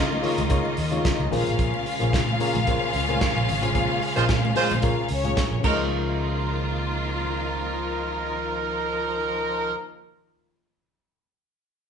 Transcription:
Already playing: fingered electric bass C#3, string section D#3 A#3 D#4 F4 D#5, clav F4 C#5
0.13 high conga
0.22 clav C#3 A#3 D#4 F4 C#5, open hi-hat
0.38 fingered electric bass C#2, closed hi-hat, high conga, low conga
0.49 clav C#3 A#3 D#4 F4 C#5, kick, closed hi-hat, muted conga
0.65 muted conga
0.77 fingered electric bass D#2, open hi-hat
0.91 clav C#3 A#3 D#4 F4 C#5, closed hi-hat, high conga
1.05 kick, snare, closed hi-hat, muted conga
1.20 fingered electric bass C#2, muted conga
1.31 fingered electric bass A#1, clav A#2 A#3 C#4 G#4 C5, string section C#3 G#3 C#4 F4 F5, open hi-hat, low conga
1.47 fingered electric bass A1, closed hi-hat
1.59 fingered electric bass A#1, kick, closed hi-hat
1.74 muted conga
1.86 open hi-hat
1.99 fingered electric bass A#1, clav A#2 A#3 C#4 G#4 C5, closed hi-hat
2.13 fingered electric bass A#2, kick, snare, closed hi-hat, muted conga
2.29 high conga
2.40 clav A#2 A#3 C#4 G#4 A#4, open hi-hat
2.55 fingered electric bass A#1, closed hi-hat, high conga, low conga
2.67 clav A#2 A#3 C#4 G#4 C5, kick, closed hi-hat
2.82 muted conga
2.93 fingered electric bass C#2, open hi-hat
3.08 clav A#2 A#3 C#4 G#4 C5, closed hi-hat, high conga
3.21 kick, snare, closed hi-hat, muted conga
3.36 fingered electric bass A#1, muted conga
3.49 fingered electric bass G#1, open hi-hat, low conga
3.61 fingered electric bass A1, clav A#2 A#3 C#4 G#4 C5, closed hi-hat
3.74 fingered electric bass A#1, clav A#2 A#3 C#4 G#4 C5, kick, closed hi-hat
4.02 open hi-hat
4.15 fingered electric bass A#1, clav A#2 A#3 C#4 G#4 D#5, horn section G#3 F4 C5, closed hi-hat
4.29 fingered electric bass A#2, kick, snare, closed hi-hat
4.45 muted conga, high conga
4.55 clav A#2 A#3 C#4 G#4 C5, horn section G#3 F4 C5, open hi-hat
4.70 fingered electric bass A#1, closed hi-hat, high conga, low conga
4.82 clav A#2 A#3 C#4 G#4 A#4, kick, closed hi-hat, muted conga
5.09 fingered electric bass C#2, string section C#4 C#5, open hi-hat
5.24 clav A#2 A#3 C#4 G#4 C#5, closed hi-hat, high conga
5.37 kick, snare, closed hi-hat, muted conga
5.51 fingered electric bass A#1
5.61 fingered electric bass C#2, clav C#3 A#3 D#4, horn section F3 D#4 A#4, string section F3 D#4 A#4, kick, crash, high conga
5.65 string section D#3 A#3 F4, clav F4 C#5

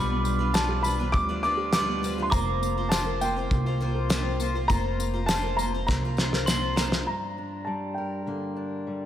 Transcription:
Already playing: upright bass B1, twelve-string acoustic guitar B2 F3 G3 D4 F4 B4, upright piano G3 F4 B5, glockenspiel D6
0.10 upright piano B3
0.24 upright piano G3, tambourine
0.39 twelve-string acoustic guitar F3 D4 F4 B4, upright piano F4
0.54 twelve-string acoustic guitar B2 F3 G3 D4 F4 B4, upright piano A5, snare, tambourine
0.68 upright piano G4
0.83 twelve-string acoustic guitar F3 D4 F4 B4, upright piano G3 B5, tambourine
0.99 twelve-string acoustic guitar F3 D4 F4 B4, upright piano B3
1.12 upright bass D2, upright piano G3 D6, kick, tambourine
1.29 twelve-string acoustic guitar F3 D4 F4 B4, upright piano F4
1.43 twelve-string acoustic guitar F3 D4 F4 B4, upright piano G3 D6
1.57 upright piano G4
1.73 twelve-string acoustic guitar B2 F3 G3 D4 F4 B4, upright piano G3 D6, snare, tambourine
1.87 upright piano B3
2.02 twelve-string acoustic guitar F3 D4 F4 B4, upright piano G3, tambourine
2.18 twelve-string acoustic guitar F3 D4 F4 B4, upright piano F4
2.22 upright piano C6
2.30 upright bass F1, twelve-string acoustic guitar F3 A#3 F4 C5, upright piano A#3 A#5, glockenspiel D6, kick, tambourine
2.47 upright piano C4
2.61 upright piano A#3, tambourine
2.76 twelve-string acoustic guitar A#3 F4 C5, upright piano F4
2.89 twelve-string acoustic guitar F3 A#3 F4 C5, upright piano A5, snare, tambourine
3.06 upright piano A#4
3.21 twelve-string acoustic guitar F3 A#3 F4 C5, upright piano A#3 G5, tambourine
3.36 twelve-string acoustic guitar A#3 F4 C5, upright piano C4
3.51 upright bass C2, upright piano A#3, kick, tambourine
3.65 twelve-string acoustic guitar A#3 F4 C5, upright piano F4
3.80 twelve-string acoustic guitar F3 A#3 F4 C5, upright piano A#3
3.94 upright piano A#4
4.09 twelve-string acoustic guitar F3 A#3 F4 C5, upright piano A#3, snare, tambourine
4.25 upright piano C4
4.39 twelve-string acoustic guitar F3 A#3 F4 C5, upright piano A#3, tambourine
4.54 twelve-string acoustic guitar A#3 F4 C5, upright piano F4
4.68 upright bass F1, twelve-string acoustic guitar F3 A#3 F4 C5, upright piano A#3 A#5, kick, tambourine
4.84 upright piano C4
4.99 upright piano A#3, tambourine
5.14 twelve-string acoustic guitar A#3 F4 C5, upright piano F4
5.26 twelve-string acoustic guitar F3 A#3 F4, upright piano A5, snare, tambourine
5.31 twelve-string acoustic guitar C5
5.43 upright piano A#4
5.57 twelve-string acoustic guitar F3 A#3 F4, upright piano A#3 A#5, tambourine
5.61 twelve-string acoustic guitar C5
5.73 twelve-string acoustic guitar A#3 F4 C5, upright piano C4
5.87 upright bass C2, upright piano A#3 A#5, kick, snare, tambourine
6.03 twelve-string acoustic guitar A#3 F4 C5, upright piano F4
6.17 twelve-string acoustic guitar F3 A#3 F4 C5, upright piano A#3, snare, tambourine
6.33 upright piano A#4, snare
6.46 twelve-string acoustic guitar F3 A#3 F4 C5, upright piano A#3, glockenspiel C6, snare, tambourine
6.63 upright piano C4
6.76 twelve-string acoustic guitar F3 A#3 F4 C5, upright piano A#3, glockenspiel A#5, snare, tambourine
6.92 twelve-string acoustic guitar A#3 F4 C5, upright piano F4, snare
7.07 steel-string acoustic guitar G2, upright piano A#5
7.38 steel-string acoustic guitar D4
7.65 steel-string acoustic guitar G3, upright piano A5
7.94 steel-string acoustic guitar A#4, upright piano G5
8.26 steel-string acoustic guitar D3 A#3
8.56 steel-string acoustic guitar D4
8.87 steel-string acoustic guitar G3

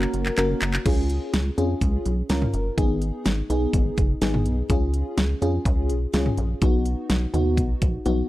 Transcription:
Already playing: fm electric piano A#3 C#4 F#4 A#4
0.02 clap
0.14 analog synth bass F#1, closed hi-hat
0.26 clap
0.37 analog synth bass F#1, fm electric piano A#3 C#4 F#4 A#4, clap, closed hi-hat
0.62 analog synth bass F#1, clap, closed hi-hat
0.74 clap
0.86 analog synth bass C#2, fm electric piano C#4 F4 G#4, kick, closed hi-hat, crash
1.10 closed hi-hat
1.34 analog synth bass C#2, snare, closed hi-hat
1.58 analog synth bass F2, fm electric piano C#4 F4 G#4, closed hi-hat
1.81 analog synth bass C#2, kick, closed hi-hat
2.06 analog synth bass B1, closed hi-hat
2.29 analog synth bass C#2, fm electric piano C#4 F4 A#4, snare, closed hi-hat
2.42 mid tom
2.54 analog synth bass F#1, closed hi-hat
2.78 analog synth bass G#1, fm electric piano B3 D#4 G#4, kick, closed hi-hat
3.02 closed hi-hat
3.26 analog synth bass G#1, snare, closed hi-hat
3.50 analog synth bass B1, fm electric piano B3 D#4 G#4, closed hi-hat
3.73 analog synth bass G#1, kick, closed hi-hat
3.98 analog synth bass F#1, kick, closed hi-hat
4.22 analog synth bass G#1, fm electric piano B3 D#4 G#4, snare, closed hi-hat
4.34 mid tom
4.46 analog synth bass B1, closed hi-hat
4.70 analog synth bass C#2, fm electric piano C#4 F4 G#4, kick, closed hi-hat
4.94 closed hi-hat
5.18 analog synth bass C#2, snare, closed hi-hat
5.42 analog synth bass F2, fm electric piano C#4 F4 G#4, closed hi-hat
5.65 analog synth bass C#2, kick, closed hi-hat
5.90 analog synth bass B1, closed hi-hat
6.14 analog synth bass C#2, fm electric piano C#4 F4 G#4, snare, closed hi-hat
6.26 mid tom
6.38 analog synth bass A#1, closed hi-hat
6.62 analog synth bass B1, fm electric piano B3 D#4 F#4, kick, closed hi-hat
6.86 closed hi-hat
7.10 analog synth bass B1, snare, closed hi-hat
7.34 analog synth bass D#2, fm electric piano B3 D#4 F#4, closed hi-hat, mid tom
7.57 analog synth bass B1, kick, closed hi-hat
7.82 analog synth bass A#1, kick, closed hi-hat
8.06 analog synth bass B1, fm electric piano B3 D#4 F#4, closed hi-hat, high tom

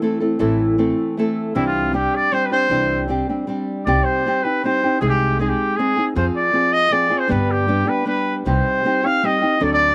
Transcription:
Already playing: nylon-string guitar E3
0.02 nylon-string guitar A3 C4 E4 A4
0.20 nylon-string guitar A3 C4 E4 A4
0.39 upright bass A1, nylon-string guitar A2 E3 A3 C4 E4 A4
0.78 nylon-string guitar A3 C4 E4 A4
1.17 nylon-string guitar A3 C4 E4 A4
1.55 upright bass C2, nylon-string guitar C3 E3 G3 C4 D4 G4, trumpet E4
1.67 trumpet F4
1.93 nylon-string guitar G3 C4 D4 G4, trumpet G4
2.16 trumpet D5
2.32 nylon-string guitar G3 C4 D4 G4, trumpet C5
2.45 trumpet B4
2.51 nylon-string guitar G3 C4 D4 G4, trumpet C5
2.69 upright bass C2, nylon-string guitar C3 E3 G3 C4 D4 G4
3.08 nylon-string guitar G3 C4 D4 G4
3.29 nylon-string guitar G3 C4 D4 G4
3.47 nylon-string guitar G3 C4 D4 G4
3.86 upright bass C2, nylon-string guitar C3 G3 C4 D#4 G4, trumpet D5
4.04 trumpet C5
4.26 nylon-string guitar G3 C4 D#4 G4
4.43 nylon-string guitar C4 D#4 G4, trumpet B4
4.64 nylon-string guitar G3 C4 D#4 G4, trumpet C5
4.84 nylon-string guitar C4 D#4 G4
5.00 upright bass C2, nylon-string guitar C3 G#3 C4 D#4 G#4, trumpet G#4
5.10 trumpet G4
5.39 nylon-string guitar G#3 C4 D#4 G#4, trumpet G#4
5.49 trumpet G4
5.76 nylon-string guitar G#3 C4 D#4, trumpet G#4
5.80 nylon-string guitar G#4
5.97 nylon-string guitar C4 D#4 G#4
6.15 upright bass F2, nylon-string guitar F3 C4 F4 G#4, trumpet C5
6.36 trumpet D5
6.53 nylon-string guitar F3 C4 F4 G#4
6.73 trumpet D#5
6.91 nylon-string guitar F3 C4 F4 G#4, trumpet D5
7.10 nylon-string guitar C4 F4 G#4
7.19 trumpet C5
7.28 nylon-string guitar G2 D3 G3 B3 D4 G4, upright bass G2, trumpet B4
7.51 trumpet G4
7.68 nylon-string guitar G3 B3 D4 G4
7.87 nylon-string guitar G3 B3 D4 G4, trumpet B4
8.05 nylon-string guitar G3 B3 D4 G4, trumpet B4
8.45 upright bass C2, nylon-string guitar C3 G3 C4 D#4 G4, trumpet C5
8.84 nylon-string guitar G3 C4 D#4 G4
9.03 nylon-string guitar C4 D#4 G4, trumpet F5
9.23 nylon-string guitar G3 C4 D#4 G4, trumpet D#5
9.42 nylon-string guitar C4 D#4 G4
9.60 upright bass D2, nylon-string guitar D3 F#3 C4 D4 A4, trumpet D5
9.73 trumpet D5

